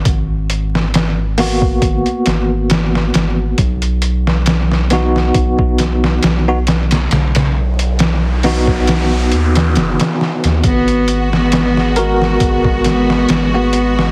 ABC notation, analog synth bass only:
X:1
M:4/4
L:1/16
Q:"Swing 16ths" 1/4=68
K:G#m
V:1 name="Analog synth bass" clef=bass
G,,,8 G,,, z G,,,4 G,,,2 | B,,,8 B,,,4 B,,,4 | B,,,8- B,,,2 D,,2 F,,, z2 D,, | G,,,8 G,,,4 G,,,4 |]